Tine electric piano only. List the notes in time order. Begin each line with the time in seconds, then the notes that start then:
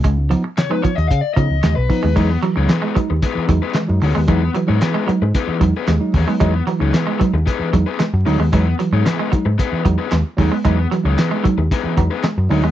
0.04 C#3
0.17 B3 D#4
0.30 F3 B3 D#4
0.56 C#3
0.69 F3 B3 D#4
0.83 B3 D#4
1.10 C#3
1.36 F3 B3 D#4
1.49 B3 D#4
1.63 C#3
1.89 F3 B3 D#4
2.15 F#3 G#3 D#4
2.42 E3
2.55 F#3 G#3 D#4
2.69 E3
2.95 F#3 G#3 D#4
3.09 G#3 D#4
3.22 G#3 D#4
3.35 E3
3.48 F#3 G#3 D#4
3.75 E3
3.88 F#3 G#3 D#4
4.01 G#3 D#4
4.27 F#3 G#3 D#4
4.54 E3
4.67 F#3 G#3 D#4
4.80 E3
5.07 F#3 G#3 D#4
5.20 G#3 D#4
5.34 G#3 D#4
5.47 E3
5.60 F#3 G#3 D#4
6.00 F#3 G#3 D#4
6.13 E3
6.27 F#3 G#3 D#4
6.40 F#3 G#3 D#4
6.66 E3
6.79 F#3 G#3 D#4
6.93 E3
7.19 F#3 G#3 D#4
7.33 G#3 D#4
7.46 G#3 D#4
7.59 E3
7.73 F#3 G#3 D#4
8.25 F#3 G#3 D#4
8.52 F#3 G#3 D#4
8.79 E3
8.92 F#3 G#3 D#4
9.06 E3
9.33 F#3 G#3 D#4
9.46 G#3 D#4
9.59 G#3 D#4
9.72 E3
9.85 F#3 G#3 D#4
10.37 F#3 G#3 D#4
10.64 F#3 G#3 D#4
10.91 E3
11.04 F#3 G#3 D#4
11.17 E3
11.43 F#3 G#3 D#4
11.57 G#3 D#4
11.70 G#3 D#4
11.83 E3
11.96 F#3 G#3 D#4
12.49 F#3 G#3 D#4